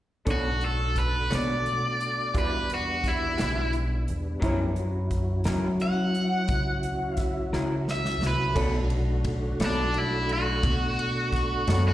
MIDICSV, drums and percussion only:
0, 0, Header, 1, 2, 480
1, 0, Start_track
1, 0, Tempo, 690449
1, 190, Time_signature, 12, 3, 24, 8
1, 8297, End_track
2, 0, Start_track
2, 0, Title_t, "Drums"
2, 185, Note_on_c, 9, 42, 71
2, 186, Note_on_c, 9, 36, 80
2, 255, Note_off_c, 9, 36, 0
2, 255, Note_off_c, 9, 42, 0
2, 424, Note_on_c, 9, 42, 45
2, 494, Note_off_c, 9, 42, 0
2, 666, Note_on_c, 9, 36, 57
2, 666, Note_on_c, 9, 42, 48
2, 735, Note_off_c, 9, 36, 0
2, 736, Note_off_c, 9, 42, 0
2, 907, Note_on_c, 9, 42, 57
2, 917, Note_on_c, 9, 38, 80
2, 977, Note_off_c, 9, 42, 0
2, 986, Note_off_c, 9, 38, 0
2, 1153, Note_on_c, 9, 42, 49
2, 1222, Note_off_c, 9, 42, 0
2, 1394, Note_on_c, 9, 42, 45
2, 1463, Note_off_c, 9, 42, 0
2, 1631, Note_on_c, 9, 36, 86
2, 1632, Note_on_c, 9, 42, 67
2, 1700, Note_off_c, 9, 36, 0
2, 1701, Note_off_c, 9, 42, 0
2, 1875, Note_on_c, 9, 42, 53
2, 1944, Note_off_c, 9, 42, 0
2, 2112, Note_on_c, 9, 36, 60
2, 2113, Note_on_c, 9, 42, 50
2, 2123, Note_on_c, 9, 38, 26
2, 2181, Note_off_c, 9, 36, 0
2, 2183, Note_off_c, 9, 42, 0
2, 2193, Note_off_c, 9, 38, 0
2, 2349, Note_on_c, 9, 42, 65
2, 2359, Note_on_c, 9, 38, 85
2, 2419, Note_off_c, 9, 42, 0
2, 2429, Note_off_c, 9, 38, 0
2, 2593, Note_on_c, 9, 42, 48
2, 2663, Note_off_c, 9, 42, 0
2, 2836, Note_on_c, 9, 42, 47
2, 2905, Note_off_c, 9, 42, 0
2, 3074, Note_on_c, 9, 36, 86
2, 3074, Note_on_c, 9, 42, 60
2, 3144, Note_off_c, 9, 36, 0
2, 3144, Note_off_c, 9, 42, 0
2, 3309, Note_on_c, 9, 42, 45
2, 3379, Note_off_c, 9, 42, 0
2, 3550, Note_on_c, 9, 42, 50
2, 3551, Note_on_c, 9, 36, 58
2, 3619, Note_off_c, 9, 42, 0
2, 3621, Note_off_c, 9, 36, 0
2, 3782, Note_on_c, 9, 42, 61
2, 3792, Note_on_c, 9, 38, 84
2, 3852, Note_off_c, 9, 42, 0
2, 3862, Note_off_c, 9, 38, 0
2, 4031, Note_on_c, 9, 42, 45
2, 4100, Note_off_c, 9, 42, 0
2, 4272, Note_on_c, 9, 42, 49
2, 4342, Note_off_c, 9, 42, 0
2, 4503, Note_on_c, 9, 42, 67
2, 4510, Note_on_c, 9, 36, 96
2, 4572, Note_off_c, 9, 42, 0
2, 4579, Note_off_c, 9, 36, 0
2, 4748, Note_on_c, 9, 42, 52
2, 4818, Note_off_c, 9, 42, 0
2, 4983, Note_on_c, 9, 42, 54
2, 4988, Note_on_c, 9, 36, 62
2, 4993, Note_on_c, 9, 38, 27
2, 5053, Note_off_c, 9, 42, 0
2, 5058, Note_off_c, 9, 36, 0
2, 5062, Note_off_c, 9, 38, 0
2, 5235, Note_on_c, 9, 38, 44
2, 5304, Note_off_c, 9, 38, 0
2, 5479, Note_on_c, 9, 38, 54
2, 5548, Note_off_c, 9, 38, 0
2, 5597, Note_on_c, 9, 38, 52
2, 5667, Note_off_c, 9, 38, 0
2, 5716, Note_on_c, 9, 38, 69
2, 5785, Note_off_c, 9, 38, 0
2, 5949, Note_on_c, 9, 36, 100
2, 5952, Note_on_c, 9, 49, 87
2, 6019, Note_off_c, 9, 36, 0
2, 6022, Note_off_c, 9, 49, 0
2, 6187, Note_on_c, 9, 51, 53
2, 6257, Note_off_c, 9, 51, 0
2, 6426, Note_on_c, 9, 51, 59
2, 6429, Note_on_c, 9, 36, 80
2, 6495, Note_off_c, 9, 51, 0
2, 6499, Note_off_c, 9, 36, 0
2, 6672, Note_on_c, 9, 51, 66
2, 6682, Note_on_c, 9, 38, 99
2, 6741, Note_off_c, 9, 51, 0
2, 6751, Note_off_c, 9, 38, 0
2, 6911, Note_on_c, 9, 51, 51
2, 6980, Note_off_c, 9, 51, 0
2, 7155, Note_on_c, 9, 51, 54
2, 7224, Note_off_c, 9, 51, 0
2, 7393, Note_on_c, 9, 36, 110
2, 7399, Note_on_c, 9, 51, 70
2, 7462, Note_off_c, 9, 36, 0
2, 7468, Note_off_c, 9, 51, 0
2, 7639, Note_on_c, 9, 51, 56
2, 7709, Note_off_c, 9, 51, 0
2, 7873, Note_on_c, 9, 36, 67
2, 7878, Note_on_c, 9, 51, 55
2, 7888, Note_on_c, 9, 38, 30
2, 7942, Note_off_c, 9, 36, 0
2, 7948, Note_off_c, 9, 51, 0
2, 7957, Note_off_c, 9, 38, 0
2, 8116, Note_on_c, 9, 51, 71
2, 8125, Note_on_c, 9, 38, 96
2, 8185, Note_off_c, 9, 51, 0
2, 8195, Note_off_c, 9, 38, 0
2, 8297, End_track
0, 0, End_of_file